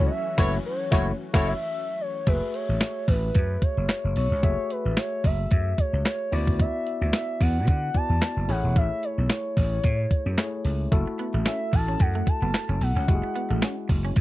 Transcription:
Already playing: analog synth pad E3 F#3 A3 C#4 F#4, tine electric piano E4 F#4 C#5
0.06 soft synth lead D#5
0.11 soft synth lead E5
0.37 slap bass F#1, tine electric piano A3 E4 F#4 C#5, horn section F#4 A4 C#5, soft synth lead B4, kick, snare, crash
0.66 soft synth lead C#5
0.91 slap bass F#1, tine electric piano A3 E4 F#4 C#5, horn section F#4 A4 C#5, kick, snare
1.34 slap bass F#1, tine electric piano A3 E4 F#4 C#5, horn section F#4 A4 C#5, kick, snare, crash
1.47 soft synth lead E5
2.01 soft synth lead C#5
2.26 slap bass F#1, tine electric piano A3 F#4 G#4 E5, soft synth lead B4, kick, closed hi-hat, crash
2.54 soft synth lead C#5, closed hi-hat
2.69 slap bass A1
2.81 snare, clap, closed hi-hat
3.08 slap bass A1, soft synth lead B4, kick, open hi-hat
3.35 slap bass F#2, kick, closed hi-hat
3.62 soft synth lead C#5, kick, closed hi-hat
3.77 slap bass F#1
3.89 snare, clap, closed hi-hat
4.04 slap bass F#1
4.16 slap bass B1, soft synth lead C#5, open hi-hat
4.31 slap bass C#2
4.43 slap bass F#1, tine electric piano A3 F#4 G#4 E5, kick, closed hi-hat
4.70 soft synth lead B4, closed hi-hat
4.85 slap bass A1
4.97 soft synth lead C#5, snare, clap, closed hi-hat
5.24 slap bass F#1, soft synth lead E5, kick, open hi-hat
5.51 slap bass F#2, kick, closed hi-hat
5.78 soft synth lead C#5, kick, closed hi-hat
5.93 slap bass C#2
6.05 soft synth lead C#5, snare, clap, closed hi-hat
6.32 slap bass D2, tine electric piano B3 E4 F#4 D5, soft synth lead D5, open hi-hat
6.47 kick
6.59 soft synth lead E5, kick, closed hi-hat
6.87 closed hi-hat
7.01 slap bass D2, soft synth lead E5
7.13 snare, clap, closed hi-hat
7.41 slap bass E2, soft synth lead F#5, kick, open hi-hat
7.67 slap bass D3, soft synth lead F#5, kick, closed hi-hat
7.94 tine electric piano B3 E4 F#4 D5, soft synth lead A5, kick, closed hi-hat
8.09 slap bass E2
8.22 snare, clap, closed hi-hat
8.37 slap bass F#1
8.48 slap bass A1, tine electric piano A3 E4 G#4 C#5, soft synth lead F#5, open hi-hat
8.64 slap bass E1
8.76 slap bass A1, soft synth lead E5, kick, closed hi-hat
9.03 soft synth lead C#5, closed hi-hat
9.18 slap bass B1
9.30 soft synth lead C#5, snare, clap, closed hi-hat
9.57 slap bass A1, kick, open hi-hat
9.84 slap bass A2, kick, closed hi-hat
10.11 kick, closed hi-hat
10.26 slap bass F#2
10.38 tine electric piano A3 E4 G#4 C#5, snare, clap, closed hi-hat
10.65 slap bass C#2, open hi-hat
10.91 slap bass F#1, tine electric piano A3 E4 F#4 A4, kick, closed hi-hat
11.07 muted clean electric guitar stroke
11.19 clean electric guitar B3, closed hi-hat
11.34 slap bass A1, clean electric guitar A3
11.46 clean electric guitar C#4, soft synth lead E5, snare, clap, closed hi-hat
11.73 slap bass A1, soft synth lead A5, muted clean electric guitar stroke, kick, open hi-hat
11.88 clean electric guitar C#4
11.99 slap bass F#2, soft synth lead F#5, kick, closed hi-hat
12.15 clean electric guitar A3
12.27 soft synth lead A5, muted clean electric guitar stroke, kick, closed hi-hat
12.42 slap bass F#1, clean electric guitar B3
12.54 snare, clap, closed hi-hat
12.69 slap bass F#1, clean electric guitar C#4
12.81 slap bass B1, soft synth lead F#5, muted clean electric guitar stroke, open hi-hat
12.96 slap bass C#2, clean electric guitar C#4
13.07 slap bass F#1, tine electric piano G#3 E4 F#4 G4, kick, closed hi-hat
13.15 tine electric piano G#4
13.24 muted clean electric guitar stroke
13.35 clean electric guitar B3, closed hi-hat
13.50 slap bass A1, clean electric guitar A3
13.62 clean electric guitar C#4, snare, clap, closed hi-hat
13.89 slap bass F#1, muted clean electric guitar stroke, kick, open hi-hat
14.05 clean electric guitar C#4
14.16 slap bass F#2, kick, closed hi-hat

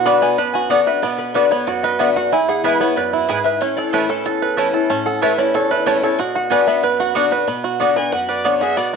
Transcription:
Already playing: steel-string acoustic guitar B2, five-string banjo B3 F#4
0.05 steel-string acoustic guitar D3 B3 D4 F#4, mandolin B3 F#4 D5 F#5, five-string banjo B4, resonator guitar played with a steel bar B5
0.22 five-string banjo B3, steel-string acoustic guitar F#4, resonator guitar played with a steel bar G#5
0.38 steel-string acoustic guitar F#2, five-string banjo B4, resonator guitar played with a steel bar A5
0.53 five-string banjo F#4, resonator guitar played with a steel bar G#5
0.70 steel-string acoustic guitar D3 B3 D4 F#4, mandolin B3 F#4 D5 F#5, five-string banjo F#4, resonator guitar played with a steel bar F#5
0.86 steel-string acoustic guitar D4 F#4, five-string banjo B4, resonator guitar played with a steel bar E5
1.02 steel-string acoustic guitar B2, five-string banjo B3, resonator guitar played with a steel bar D5
1.18 resonator guitar played with a steel bar B4
1.34 steel-string acoustic guitar D3 B3 D4 F#4, mandolin B3 F#4 D5 F#5, resonator guitar played with a steel bar A4, five-string banjo B4
1.50 five-string banjo B3, steel-string acoustic guitar D4 F#4, resonator guitar played with a steel bar C#5
1.67 steel-string acoustic guitar F#2, five-string banjo F#4, resonator guitar played with a steel bar D5
1.83 five-string banjo B4, resonator guitar played with a steel bar D#5
1.99 steel-string acoustic guitar D3 B3 D4 F#4, mandolin B3 F#4 D5 F#5, five-string banjo B3, resonator guitar played with a steel bar E5
2.16 steel-string acoustic guitar D4 F#4, five-string banjo F#4, resonator guitar played with a steel bar F#5
2.32 steel-string acoustic guitar E2, five-string banjo E4, resonator guitar played with a steel bar G#5
2.48 five-string banjo G#4, resonator guitar played with a steel bar F#5
2.63 steel-string acoustic guitar E3 G#3 B3 E4, mandolin B3 E4 B4 G#5, five-string banjo B4, resonator guitar played with a steel bar E5
2.80 five-string banjo B3, steel-string acoustic guitar B3 E4, resonator guitar played with a steel bar C#5
2.96 steel-string acoustic guitar F#2, five-string banjo B4, resonator guitar played with a steel bar D5
3.13 five-string banjo E4, resonator guitar played with a steel bar F#4
3.28 steel-string acoustic guitar G#2, mandolin B3 E4 B4 G#5, five-string banjo G#4, resonator guitar played with a steel bar B4
3.44 five-string banjo B4, resonator guitar played with a steel bar E5
3.60 steel-string acoustic guitar A2, five-string banjo C#4, resonator guitar played with a steel bar C#5
3.77 five-string banjo A4, resonator guitar played with a steel bar D5
3.93 steel-string acoustic guitar E3 A3 C#4 E4, mandolin A3 E4 C#5 A5, resonator guitar played with a steel bar B4, five-string banjo B4
4.09 five-string banjo C#4, steel-string acoustic guitar C#4 E4, resonator guitar played with a steel bar A4
4.25 steel-string acoustic guitar E2, five-string banjo A4
4.42 five-string banjo B4
4.57 steel-string acoustic guitar E3 A3 C#4 E4, mandolin A3 E4 C#5 A5, five-string banjo C#4
4.73 steel-string acoustic guitar C#4 E4, five-string banjo A4
4.90 steel-string acoustic guitar A2, five-string banjo C#4, resonator guitar played with a steel bar A5
5.06 five-string banjo A4, resonator guitar played with a steel bar F#5
5.22 steel-string acoustic guitar E3 A3 C#4 E4, mandolin A3 E4 C#5 A5, five-string banjo B4, resonator guitar played with a steel bar E5
5.38 five-string banjo C#4, steel-string acoustic guitar C#4 E4, resonator guitar played with a steel bar D5
5.54 steel-string acoustic guitar E2, five-string banjo A4, resonator guitar played with a steel bar C#5
5.70 resonator guitar played with a steel bar E4, five-string banjo B4
5.86 steel-string acoustic guitar E3 A3 C#4 E4, mandolin A3 E4 C#5 A5, five-string banjo C#4, resonator guitar played with a steel bar A4
6.02 steel-string acoustic guitar C#4 E4, five-string banjo A4, resonator guitar played with a steel bar C#5
6.19 steel-string acoustic guitar B2, five-string banjo F#4, resonator guitar played with a steel bar D5
6.35 five-string banjo F#4, resonator guitar played with a steel bar F#5
6.50 steel-string acoustic guitar D3 B3 D4 F#4, mandolin B3 F#4 D5 F#5, five-string banjo B4, resonator guitar played with a steel bar G#5
6.66 five-string banjo B3, steel-string acoustic guitar D4 F#4, resonator guitar played with a steel bar E5
6.83 steel-string acoustic guitar F#2, five-string banjo B4, resonator guitar played with a steel bar D5
7.00 five-string banjo F#4, resonator guitar played with a steel bar F#5
7.15 steel-string acoustic guitar D3 B3 D4 F#4, mandolin B3 F#4 D5 F#5, five-string banjo F#4
7.31 steel-string acoustic guitar D4 F#4, five-string banjo B4
7.47 steel-string acoustic guitar B2, five-string banjo B3
7.64 five-string banjo F#4
7.80 steel-string acoustic guitar D3 B3 D4 F#4, mandolin B3 F#4 D5 F#5, five-string banjo F#4
7.96 five-string banjo B3, steel-string acoustic guitar D4 F#4, resonator guitar played with a steel bar B4, fiddle G#5
8.12 steel-string acoustic guitar F#2, five-string banjo F#4, resonator guitar played with a steel bar B4, fiddle F#5
8.29 resonator guitar played with a steel bar F#4, five-string banjo B4, fiddle D5
8.44 steel-string acoustic guitar D3 B3 D4 F#4, mandolin B3 F#4 D5 F#5, five-string banjo B3, resonator guitar played with a steel bar F#4, fiddle C#5
8.61 steel-string acoustic guitar D4 F#4, five-string banjo F#4, resonator guitar played with a steel bar G#4, fiddle E5
8.77 steel-string acoustic guitar B2, five-string banjo B3, resonator guitar played with a steel bar F#4, fiddle D5

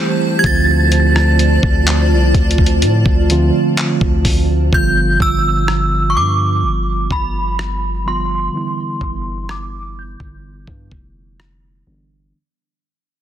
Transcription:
Already playing: tine electric piano E3 G3 A3 C4 G4, ambient pad E4 G4 C5 A5
0.39 synth bell G#6
0.43 808-style bass D2, tine electric piano D3 F3 A3 C4 F4, ambient pad F4 D5, synth bell A6, kick, closed hi-hat
0.92 closed hi-hat
1.16 cross-stick
1.39 closed hi-hat
1.63 808-style bass D2, kick
1.87 clap, closed hi-hat
2.11 808-style bass C2
2.34 808-style bass D2, kick, closed hi-hat
2.51 closed hi-hat
2.58 kick
2.66 closed hi-hat
2.82 808-style bass A2, closed hi-hat
3.06 808-style bass D2, kick
3.29 tine electric piano D3 F3 A3 C4 F4, closed hi-hat
3.77 clap, closed hi-hat
4.01 808-style bass D2, kick
4.25 808-style bass D2, kick, open hi-hat
4.72 808-style bass G1, tine electric piano D3 F3 G3 B3 F4, synth bell G6, kick
5.20 808-style bass G1, synth bell E6, kick
5.68 cross-stick
6.10 synth bell C#6
6.15 808-style bass G2, synth bell D6
6.63 808-style bass G1
7.11 808-style bass G1, synth bell B5, kick
7.59 cross-stick
8.05 tine electric piano D3 F3 G3 B3 F4, synth bell C6
8.53 tine electric piano D3 E3 G3 B3 E4
9.01 808-style bass G1, kick
9.49 synth bell D6, cross-stick
9.99 synth bell G6
10.20 808-style bass G1, kick
10.67 808-style bass G2, kick
10.92 808-style bass F1, kick
11.40 cross-stick
11.86 808-style bass G1, tine electric piano D3 E3 G3 B3 D4

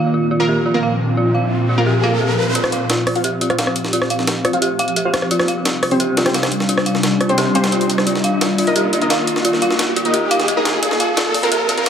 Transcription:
Already playing: synth drone A#2 F3 C4, riser
0.14 synth bell F4
0.31 synth bell F4
0.40 synth stab A#3 F4 A#4
0.48 synth bell G4
0.66 synth bell F4
0.74 synth stab A#3 F4 A#4
0.83 synth bell F5
1.17 synth bell F4
1.35 synth bell F5
1.69 synth bell F4
1.78 synth stab A#3 F4 A#4
1.86 synth bell G4
2.03 synth stab A#3 F4 A#4, synth bell F5
2.21 synth bell G4
2.55 synth drone F3 C4 G4, synth bell F4, closed hi-hat, riser
2.64 cross-stick, snare
2.72 synth bell F5, closed hi-hat
2.90 synth bell F4, snare, closed hi-hat
3.07 synth bell F4, cross-stick, closed hi-hat, open hi-hat
3.15 synth stab F4 C5 F5, closed hi-hat
3.24 synth bell G4, closed hi-hat
3.41 synth bell F4, closed hi-hat
3.50 synth stab F4 C5 F5, cross-stick, closed hi-hat
3.58 synth bell F5, snare, closed hi-hat
3.67 cross-stick
3.76 closed hi-hat
3.84 snare
3.93 synth bell F4, closed hi-hat
4.02 cross-stick, snare
4.10 synth bell F5, closed hi-hat
4.19 snare
4.27 snare, closed hi-hat
4.45 synth bell F4, cross-stick, closed hi-hat
4.53 synth stab F4 C5 F5, closed hi-hat
4.62 synth bell G4, closed hi-hat
4.79 synth bell F5, closed hi-hat
4.88 closed hi-hat
4.96 synth bell G4, closed hi-hat
5.05 synth stab F4 C5 F5
5.14 cross-stick, snare, closed hi-hat
5.22 cross-stick
5.31 synth drone C3 G3 D4, synth bell F4, closed hi-hat
5.39 cross-stick, snare
5.48 synth bell F5, closed hi-hat
5.65 synth bell F4, snare, closed hi-hat
5.83 synth bell F4, cross-stick, closed hi-hat, open hi-hat
5.91 synth stab C4 G4 C5, closed hi-hat
6.00 synth bell G4, closed hi-hat
6.17 synth bell F4, snare, closed hi-hat
6.26 synth stab C4 G4 C5, cross-stick, snare, closed hi-hat
6.34 synth bell F5, snare, closed hi-hat
6.43 cross-stick, snare, closed hi-hat
6.52 closed hi-hat
6.60 snare
6.69 synth bell F4, closed hi-hat
6.78 cross-stick, snare
6.86 synth bell F5, closed hi-hat
6.95 snare
7.03 snare, closed hi-hat
7.21 synth bell F4, cross-stick, closed hi-hat
7.29 synth stab C4 G4 C5, closed hi-hat
7.38 synth bell G4, snare, closed hi-hat
7.55 synth stab C4 G4 C5, synth bell F5, closed hi-hat
7.64 snare, closed hi-hat
7.72 synth bell F4, closed hi-hat
7.81 closed hi-hat
7.90 closed hi-hat
7.98 cross-stick, snare
8.07 synth drone D#3 A#3 F4, synth bell F4, closed hi-hat
8.15 snare
8.24 synth bell F5, closed hi-hat
8.41 synth bell F4, snare, closed hi-hat
8.58 synth bell F4, closed hi-hat, open hi-hat
8.67 synth stab D#4 A#4 D#5, closed hi-hat
8.76 synth bell G4, closed hi-hat
8.93 synth bell F4, closed hi-hat
9.02 synth stab D#4 A#4 D#5, closed hi-hat
9.10 synth bell F5, snare, closed hi-hat
9.27 closed hi-hat
9.36 snare
9.45 synth bell F4, closed hi-hat
9.53 snare
9.62 synth bell F5, closed hi-hat
9.71 snare
9.79 snare, closed hi-hat
9.96 synth bell F4, closed hi-hat
10.05 synth stab D#4 A#4 D#5, closed hi-hat
10.14 synth bell G4, closed hi-hat
10.31 synth bell F5, closed hi-hat
10.40 snare, closed hi-hat
10.48 synth bell G4, closed hi-hat
10.57 synth stab D#4 A#4 D#5
10.65 snare, closed hi-hat
10.83 synth drone A#2 F3 C4, synth bell F4, closed hi-hat
10.91 snare
11.00 synth bell F5, closed hi-hat
11.17 synth bell F4, snare, closed hi-hat
11.34 synth bell F4, closed hi-hat, open hi-hat
11.43 synth stab A#3 F4 A#4, closed hi-hat
11.52 synth bell G4, closed hi-hat
11.69 synth bell F4, closed hi-hat
11.78 synth stab A#3 F4 A#4, closed hi-hat
11.86 synth bell F5, snare, closed hi-hat

